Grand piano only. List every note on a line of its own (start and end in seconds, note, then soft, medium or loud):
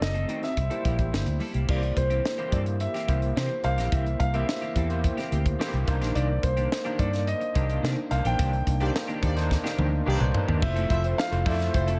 0.02 0.40 D#5 medium
0.43 1.37 E5 medium
1.70 1.98 D5 medium
1.97 2.55 C5 medium
2.53 2.59 D5 medium
2.81 3.38 E5 medium
3.37 3.66 C5 medium
3.64 3.93 F5 loud
3.92 4.21 E5 medium
4.20 4.34 F5 medium
4.34 5.42 E5 loud
6.15 6.44 D5 medium
6.43 7.01 C5 medium
7.00 7.26 D5 medium
7.27 7.79 D#5 medium
8.11 8.24 F5 medium
8.26 10.31 G5 loud
10.63 11.20 E5 loud
11.18 11.47 F5 loud
11.46 11.99 E5 medium